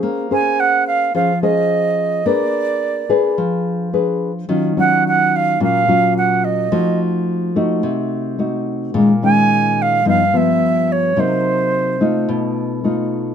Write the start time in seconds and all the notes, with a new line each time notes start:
Already playing: C#4 G#4 C5
0.03 A#3
0.31 C#4 G#4 C5 G#5
0.60 F#5
0.87 F5
1.15 F3 C#4 G#4 C5 F5
1.43 C#4 G#4 C5 D#5
2.26 A#3 D4 G#4 B4 D5
3.09 D4 G#4 B4
3.38 F3
3.93 D4 G#4 B4
4.49 D#3 F#3 C#4 F4
4.77 F#3 C#4 F4 F#5
5.08 F#5
5.36 F5
5.60 A#2 F#3 C#4 F4 F5
5.88 F#3 C#4 F4
6.18 F#5
6.44 D#5
6.72 F3 A3 D#4 F#4
7.56 A3 D#4 F#4
7.83 C3
8.38 A3 D#4 F#4
8.94 A#2 D#3 G#3 C#4
9.22 D#3 G#3 C#4 G#5
9.82 F5
10.05 G2 F3 B3 D#4 F5
10.34 F3 B3 E5
10.92 C#5
11.17 C3 F#3 A#3 D#4 C5
12.00 A3 D#4 F4
12.29 B2
12.84 A3 D#4 F4